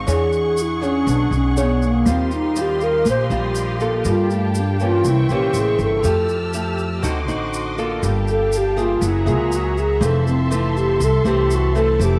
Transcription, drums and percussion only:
0.08 shaker medium
0.32 shaker soft
0.57 shaker medium
0.83 shaker soft
1.08 shaker medium
1.32 shaker soft
1.57 shaker medium
1.82 shaker soft
2.06 shaker medium
2.31 shaker soft
2.56 shaker medium
2.81 shaker soft
3.06 shaker medium
3.31 shaker soft
3.55 shaker medium
3.80 shaker soft
4.05 shaker medium
4.30 shaker soft
4.55 shaker medium
4.80 shaker soft
5.04 shaker medium
5.29 shaker soft
5.54 shaker medium
5.79 shaker soft
6.04 shaker medium
6.29 shaker soft
6.53 shaker medium
6.78 shaker soft
7.04 shaker medium
7.29 shaker soft
7.54 shaker medium
7.78 shaker soft
8.03 shaker medium
8.28 shaker soft
8.52 shaker medium
8.78 shaker soft
9.02 shaker medium
9.27 shaker soft
9.52 shaker medium
9.77 shaker soft
10.02 shaker medium
10.27 shaker soft
10.52 shaker medium
10.77 shaker soft
11.01 shaker medium
11.25 shaker soft
11.51 shaker medium
11.76 shaker soft
12.01 shaker medium

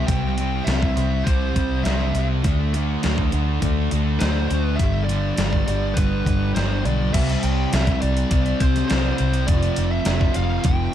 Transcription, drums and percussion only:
0.08 kick loud
0.08 closed hi-hat loud
0.38 closed hi-hat medium
0.67 snare loud
0.67 closed hi-hat medium
0.83 kick loud
0.97 closed hi-hat medium
1.27 kick loud
1.27 closed hi-hat loud
1.56 kick medium
1.56 closed hi-hat medium
1.85 snare loud
1.85 closed hi-hat loud
2.15 closed hi-hat medium
2.44 kick loud
2.44 closed hi-hat medium
2.74 closed hi-hat medium
3.03 snare loud
3.03 closed hi-hat medium
3.18 kick loud
3.32 closed hi-hat medium
3.62 kick loud
3.62 closed hi-hat medium
3.91 closed hi-hat medium
4.21 snare loud
4.21 closed hi-hat medium
4.50 closed hi-hat medium
4.79 kick loud
4.79 closed hi-hat loud
5.09 closed hi-hat medium
5.38 snare loud
5.38 closed hi-hat loud
5.53 kick medium
5.68 closed hi-hat medium
5.97 kick loud
5.97 closed hi-hat loud
6.26 kick medium
6.26 closed hi-hat medium
6.56 snare loud
6.56 closed hi-hat medium
6.85 closed hi-hat medium
7.14 kick loud
7.14 closed hi-hat loud
7.14 crash loud
7.29 closed hi-hat soft
7.43 closed hi-hat medium
7.73 snare loud
7.73 closed hi-hat loud
7.87 kick loud
7.87 closed hi-hat medium
8.02 closed hi-hat medium
8.17 closed hi-hat soft
8.31 kick loud
8.31 closed hi-hat medium
8.46 closed hi-hat soft
8.60 kick medium
8.60 closed hi-hat medium
8.76 snare soft
8.76 closed hi-hat medium
8.90 snare loud
8.90 closed hi-hat loud
9.18 closed hi-hat medium
9.33 closed hi-hat medium
9.48 kick loud
9.48 closed hi-hat loud
9.63 closed hi-hat medium
9.76 closed hi-hat medium
10.05 snare loud
10.05 closed hi-hat loud
10.21 kick loud
10.34 closed hi-hat medium
10.64 kick loud
10.64 closed hi-hat loud

